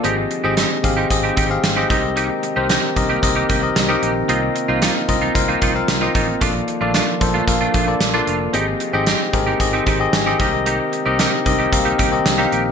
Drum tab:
HH |xxxxxxxx|xxxxxxxx|xxxxxxxx|xxxxxxxx|
SD |--o---o-|--o---o-|--o---o-|--o---o-|
BD |---ooo-o|---ooo--|---ooo-o|o--ooo--|

HH |xxxxxxxx|xxxxxxxx|
SD |--o---o-|--o---o-|
BD |---ooo-o|---ooo--|